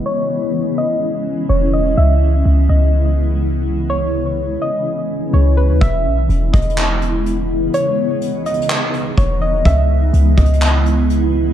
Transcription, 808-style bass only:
\new Staff \with { instrumentName = "808-style bass" } { \clef bass \time 4/4 \key e \major \tempo 4 = 125 r2. e,,4 | cis,4 cis,8 cis,2~ cis,8~ | cis,4. r4. cis,8. dis,16 | e,,8 b,,8 e,,8 e,,2~ e,,8 |
r2. e,,4 | cis,4 cis,8 cis,2~ cis,8 | }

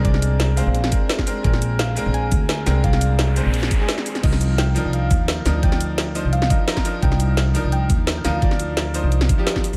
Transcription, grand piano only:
\new Staff \with { instrumentName = "Grand piano" } { \time 4/4 \key c \minor \tempo 4 = 172 <aes c' d' d''>4. <aes c' d' c''>4 <aes c' d' bes'>4 <aes c' d' bes'>8 | <aes c' d' bes'>4. <aes c' d' bes'>2 <aes c' d' bes'>8 | <aes c' d' d''>4. <aes c' d' c''>4 r16 <aes c' d' aes'>4~ <aes c' d' aes'>16 | <f c' ees' bes'>4. <f d' ees' bes'>2 <f d' ees' bes'>8 |
<f d' ees' d''>4. <f d' ees' c''>4 <f d' ees' bes'>4 <f d' ees' bes'>8 | <f d' ees' bes'>4. <f d' ees' bes'>2 <f d' ees' bes'>8 | <f d' ees' d''>4. <f d' ees' c''>4 r16 <f d' ees' g'>8. r8 | }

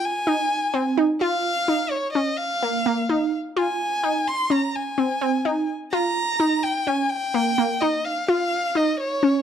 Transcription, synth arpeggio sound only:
\new Staff \with { instrumentName = "Synth arpeggio sound" } { \time 5/8 \key des \lydian \tempo 4 = 127 f'8 ees'4 c'8 ees'8 | f'4 ees'4 des'8~ | des'8 bes8 bes8 ees'4 | f'4 ees'4 des'8~ |
des'8 c'8 c'8 ees'4 | f'4 ees'4 des'8~ | des'8 bes8 bes8 ees'4 | f'4 ees'4 des'8 | }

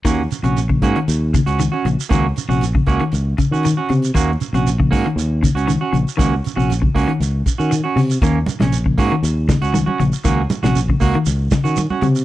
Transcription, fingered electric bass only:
\new Staff \with { instrumentName = "Fingered electric bass" } { \clef bass \time 4/4 \key ees \dorian \tempo 4 = 118 ees,8 r16 bes,,8. aes,16 r16 ees,8. des,8 r16 bes,,16 r16 | des,8 r16 bes,,8. des,16 r16 des,8 r16 ees8 r16 c8 | ees,8 r16 bes,,8. aes,16 r16 ees,8. des,8 r16 bes,,16 r16 | des,8 r16 bes,,8. des,16 r16 des,8 r16 ees8 r16 c8 |
ees,8 r16 bes,,8. aes,16 r16 ees,8. des,8 r16 bes,,16 r16 | des,8 r16 bes,,8. des,16 r16 des,8 r16 ees8 r16 c8 | }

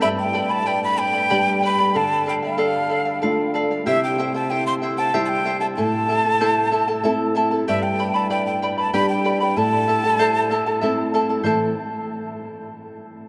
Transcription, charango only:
\new Staff \with { instrumentName = "Charango" } { \time 3/4 \key a \minor \tempo 4 = 95 <g' b' d'' g'' b''>8 <b' d'' g'' b''>16 <b' d'' b''>16 <b' d'' g'' b''>8 <b' d'' g'' b''>16 <b' d'' b''>16 <g' b' d'' g'' b''>8 <b' d'' g'' b''>16 <b' d'' b''>16 | <a' d'' f''>8 <a' d'' f''>16 <d'' f''>16 <a' d'' f''>8 <a' d'' f''>16 <d'' f''>16 <a' d'' f''>8 <a' d'' f''>16 <d'' f''>16 | <e' g' c'' e'' g''>8 <e' c'' e'' g''>16 <e' c'' g''>16 <e' c'' e'' g''>8 <e' c'' e'' g''>16 <e' c'' g''>16 <e' g' c'' e'' g''>8 <e' c'' e'' g''>16 <e' c'' g''>16 | <e' a' e'' a''>8 <e' a' e'' a''>16 <e' a' a''>16 <e' a' c'' e'' a''>8 <e' a' e'' a''>16 <e' a' a''>16 <e' a' e'' a''>8 <e' a' e'' a''>16 <e' a' a''>16 |
<g' b' d'' g'' b''>8 <b' d'' g'' b''>16 <b' d'' b''>16 <b' d'' g'' b''>8 <b' d'' g'' b''>16 <b' d'' b''>16 <g' b' d'' g'' b''>8 <b' d'' g'' b''>16 <b' d'' b''>16 | <e' a' e'' a''>8 <e' a' e'' a''>16 <e' a' a''>16 <e' a' c'' e'' a''>8 <e' a' e'' a''>16 <e' a' a''>16 <e' a' e'' a''>8 <e' a' e'' a''>16 <e' a' a''>16 | <e' a' c'' e'' a''>8 r2 r8 | }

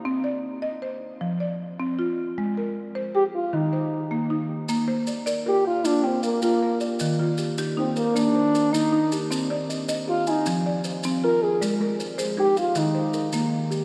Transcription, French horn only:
\new Staff \with { instrumentName = "French horn" } { \time 12/8 \key bes \mixolydian \tempo 4. = 104 r1. | r2 g'8 f'8 ees'2 r4 | r2 g'8 f'8 d'8 c'8 bes8 bes4~ bes32 r16. | r2 c'16. c'32 bes8 d'4. ees'4~ ees'32 r16. |
r2 f'8 ees'8 r2 bes'8 aes'8 | r2 g'8 f'8 ees'2 r4 | }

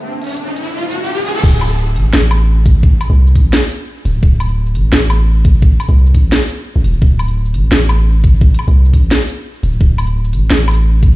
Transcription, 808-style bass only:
\new Staff \with { instrumentName = "808-style bass" } { \clef bass \time 4/4 \key c \mixolydian \tempo 4 = 172 r1 | d,,4. a,,8 a,,2~ | a,,8 r16 c,8. a,,8 r4. d,,8 | d,,4. a,,8 a,,2~ |
a,,8 r16 c,8. a,,8 r4 r16 a,,16 d,,8 | d,,4. a,,8 a,,2~ | a,,8 r16 c,8. a,,8 r4. d,,8 | d,,4. a,,8 a,,2 | }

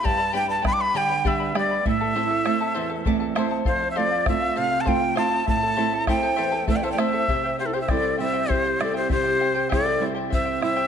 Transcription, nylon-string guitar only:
\new Staff \with { instrumentName = "Nylon-string guitar" } { \time 6/8 \key c \major \tempo 4. = 66 << { r2. | r2 d''8 c''8 | r2. | r2 a'16 c''16 e''8 |
r2. | r2. | } \\ { g,8 <g b d'>8 <g b d'>8 d8 <g b d'>8 <g b d'>8 | a,8 <a c' e'>8 <a c' e'>8 e,8 <a c' e'>8 <a c' e'>8 | f,8 <a c' f'>8 <a c' f'>8 c8 <a c' f'>8 <a c' f'>8 | a,8 <a c' e'>8 <a c' e'>8 e,8 <a c' e'>8 <a c' e'>8 |
c4 <g c' e'>8 <g c' e'>4 <g c' e'>8 | c4 <g c' e'>8 <g c' e'>4 <g c' e'>8 | } >> }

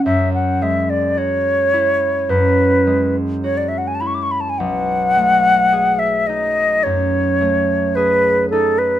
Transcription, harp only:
\new Staff \with { instrumentName = "Harp" } { \time 4/4 \key e \major \tempo 4 = 54 <fis, gis fis'>8 gis8 fis'8 e'8 fis,8 gis8 fis'8 e'8 | b,,8 a8 gis'8 dis'8 fis,8 a8 gis'8 dis'8 | }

